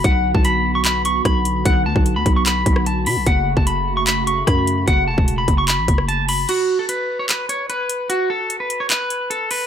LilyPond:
<<
  \new Staff \with { instrumentName = "Clean electric guitar" } { \time 4/4 \key fis \phrygian \tempo 4 = 149 fis''8. a''16 b''8. cis'''16 b''8 cis'''8 b''4 | fis''8 a''8. b''8 cis'''16 b''4 a''8 b''8 | fis''8. a''16 b''8. cis'''16 b''8 cis'''8 b''4 | fis''8 a''8. b''8 cis'''16 b''4 a''8 b''8 |
fis'8. a'16 b'8. cis''16 b'8 cis''8 b'4 | fis'8 a'8. b'8 cis''16 b'4 a'8 b'8 | }
  \new Staff \with { instrumentName = "Analog synth pad" } { \time 4/4 \key fis \phrygian <d b fis'>1~ | <d b fis'>1 | <cis a fis'>1~ | <cis a fis'>1 |
r1 | r1 | }
  \new Staff \with { instrumentName = "808-style bass" } { \clef bass \time 4/4 \key fis \phrygian b,,8. b,,2~ b,,16 b,,4 | b,,8 d,16 b,,8 d,16 b,,4 b,,4 b,16 b,,16 | fis,,8. fis,,2~ fis,,16 fis,4 | fis,,8 e,,16 e,,8. fis,,8. a,,16 fis,,4. |
r1 | r1 | }
  \new DrumStaff \with { instrumentName = "Drums" } \drummode { \time 4/4 <hh bd>8. bd16 hh4 <hc hh>8 hh8 <hh bd ss>8 hh8 | <hh bd>8. bd16 hh8 <hh bd>8 <hc hh>8 <hh bd>16 ss16 hh8 hho8 | <hh bd>8. bd16 hh4 <hc hh>8 hh8 <hh bd ss>8 hh8 | <hh bd>8. bd16 hh8 <hh bd>8 <hc hh>8 <hh bd>16 ss16 hh8 hho8 |
<cymc hh>4 hh4 <hc hh>8 hh8 hh8 hh8 | hh4 hh8 hh8 <hc hh>8 hh8 hh8 hho8 | }
>>